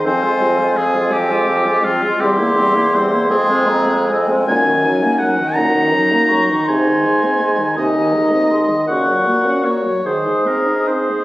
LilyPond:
<<
  \new Staff \with { instrumentName = "Flute" } { \time 6/8 \key f \minor \tempo 4. = 54 aes''2~ aes''8 r8 | c'''4. c'''8 bes''8 aes''8~ | \key aes \mixolydian aes''4. ges''8 bes''8 des'''8 | c'''4. aes''8 bes''8 c'''8 |
des'''4 r8 ees'''4. | }
  \new Staff \with { instrumentName = "Oboe" } { \time 6/8 \key f \minor c''4 aes'8 g'4 f'8 | g'4 c''8 aes'4 r8 | \key aes \mixolydian aes''4 ges''8 bes''4. | aes''4. ees''4. |
ges''4 des''8 c''8 bes'8 c''8 | }
  \new Staff \with { instrumentName = "Clarinet" } { \time 6/8 \key f \minor c'16 f'16 c'16 f'16 c'16 f'16 c'16 f'16 c'16 f'16 c'16 f'16 | c'16 e'16 c'16 e'16 c'16 e'16 c'16 aes16 c'16 aes16 c'16 aes16 | \key aes \mixolydian ees'2.~ | ees'2. |
ges'4. aes'4. | }
  \new Staff \with { instrumentName = "French horn" } { \clef bass \time 6/8 \key f \minor f16 aes16 f16 aes16 f16 aes16 f16 aes16 f16 aes16 f16 aes16 | g16 bes16 g16 bes16 g16 bes16 aes16 c'16 aes16 c'16 aes16 c'16 | \key aes \mixolydian bes,16 ees16 ges16 bes16 ges16 ees16 bes,16 ees16 ges16 bes16 ges16 ees16 | c16 ees16 aes16 c'16 aes16 ees16 c16 ees16 aes16 c'16 aes16 ees16 |
des16 ges16 bes16 des'16 bes16 ges16 ees16 aes16 c'16 ees'16 c'16 aes16 | }
  \new Staff \with { instrumentName = "Bassoon" } { \clef bass \time 6/8 \key f \minor f,2~ f,8 r8 | e,4. f,4. | \key aes \mixolydian ges,4. ges,4. | aes,4. ees,4. |
bes,4. aes,4. | }
>>